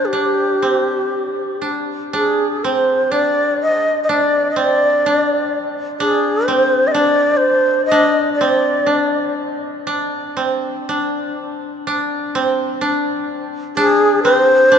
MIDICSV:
0, 0, Header, 1, 3, 480
1, 0, Start_track
1, 0, Tempo, 993377
1, 57, Time_signature, 2, 2, 24, 8
1, 1978, Tempo, 950872
1, 3898, Tempo, 988468
1, 5818, Tempo, 949367
1, 7302, End_track
2, 0, Start_track
2, 0, Title_t, "Shakuhachi"
2, 0, Program_c, 0, 77
2, 24, Note_on_c, 0, 68, 39
2, 34, Note_on_c, 0, 67, 54
2, 42, Note_off_c, 0, 68, 0
2, 773, Note_off_c, 0, 67, 0
2, 1034, Note_on_c, 0, 68, 60
2, 1277, Note_on_c, 0, 72, 64
2, 1284, Note_off_c, 0, 68, 0
2, 1504, Note_on_c, 0, 74, 74
2, 1511, Note_off_c, 0, 72, 0
2, 1744, Note_off_c, 0, 74, 0
2, 1747, Note_on_c, 0, 75, 78
2, 1934, Note_off_c, 0, 75, 0
2, 1950, Note_on_c, 0, 75, 55
2, 1976, Note_on_c, 0, 74, 76
2, 1983, Note_off_c, 0, 75, 0
2, 2185, Note_off_c, 0, 74, 0
2, 2188, Note_on_c, 0, 75, 49
2, 2221, Note_on_c, 0, 74, 75
2, 2229, Note_off_c, 0, 75, 0
2, 2708, Note_off_c, 0, 74, 0
2, 2942, Note_on_c, 0, 68, 68
2, 3175, Note_on_c, 0, 72, 75
2, 3183, Note_off_c, 0, 68, 0
2, 3381, Note_on_c, 0, 75, 63
2, 3389, Note_off_c, 0, 72, 0
2, 3404, Note_on_c, 0, 74, 77
2, 3412, Note_off_c, 0, 75, 0
2, 3632, Note_on_c, 0, 72, 81
2, 3640, Note_off_c, 0, 74, 0
2, 3875, Note_off_c, 0, 72, 0
2, 3878, Note_on_c, 0, 75, 81
2, 4110, Note_off_c, 0, 75, 0
2, 4112, Note_on_c, 0, 74, 72
2, 4590, Note_off_c, 0, 74, 0
2, 6787, Note_on_c, 0, 68, 85
2, 7007, Note_off_c, 0, 68, 0
2, 7021, Note_on_c, 0, 72, 100
2, 7302, Note_off_c, 0, 72, 0
2, 7302, End_track
3, 0, Start_track
3, 0, Title_t, "Koto"
3, 0, Program_c, 1, 107
3, 0, Note_on_c, 1, 60, 57
3, 0, Note_on_c, 1, 62, 51
3, 60, Note_off_c, 1, 62, 0
3, 62, Note_on_c, 1, 62, 57
3, 300, Note_off_c, 1, 60, 0
3, 302, Note_on_c, 1, 60, 48
3, 779, Note_off_c, 1, 62, 0
3, 780, Note_on_c, 1, 62, 41
3, 1029, Note_off_c, 1, 62, 0
3, 1031, Note_on_c, 1, 62, 62
3, 1276, Note_off_c, 1, 60, 0
3, 1277, Note_on_c, 1, 60, 53
3, 1503, Note_off_c, 1, 62, 0
3, 1505, Note_on_c, 1, 62, 56
3, 1975, Note_off_c, 1, 62, 0
3, 1977, Note_on_c, 1, 62, 65
3, 2212, Note_off_c, 1, 60, 0
3, 2214, Note_on_c, 1, 60, 57
3, 2464, Note_off_c, 1, 62, 0
3, 2466, Note_on_c, 1, 62, 59
3, 2939, Note_off_c, 1, 62, 0
3, 2941, Note_on_c, 1, 62, 72
3, 3180, Note_off_c, 1, 60, 0
3, 3182, Note_on_c, 1, 60, 57
3, 3415, Note_off_c, 1, 62, 0
3, 3417, Note_on_c, 1, 62, 64
3, 3904, Note_off_c, 1, 62, 0
3, 3906, Note_on_c, 1, 62, 73
3, 4144, Note_off_c, 1, 60, 0
3, 4146, Note_on_c, 1, 60, 60
3, 4366, Note_off_c, 1, 62, 0
3, 4368, Note_on_c, 1, 62, 58
3, 4853, Note_off_c, 1, 62, 0
3, 4855, Note_on_c, 1, 62, 57
3, 5095, Note_off_c, 1, 60, 0
3, 5097, Note_on_c, 1, 60, 53
3, 5349, Note_off_c, 1, 62, 0
3, 5351, Note_on_c, 1, 62, 55
3, 5826, Note_off_c, 1, 62, 0
3, 5828, Note_on_c, 1, 62, 70
3, 6068, Note_off_c, 1, 60, 0
3, 6070, Note_on_c, 1, 60, 61
3, 6302, Note_off_c, 1, 62, 0
3, 6304, Note_on_c, 1, 62, 61
3, 6786, Note_off_c, 1, 62, 0
3, 6788, Note_on_c, 1, 62, 77
3, 7027, Note_off_c, 1, 60, 0
3, 7029, Note_on_c, 1, 60, 66
3, 7265, Note_off_c, 1, 62, 0
3, 7267, Note_on_c, 1, 62, 68
3, 7302, Note_off_c, 1, 60, 0
3, 7302, Note_off_c, 1, 62, 0
3, 7302, End_track
0, 0, End_of_file